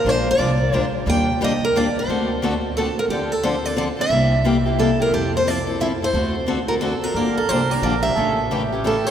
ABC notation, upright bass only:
X:1
M:3/4
L:1/8
Q:"Swing" 1/4=178
K:Dphr
V:1 name="Upright bass" clef=bass
B,,,2 C,,2 D,,2 | E,,6 | D,,6 | [K:Dm] D,,6 |
C,,6 | F,,6 | D,,6 | G,,,2 C,,2 B,,,2 |
A,,,6 |]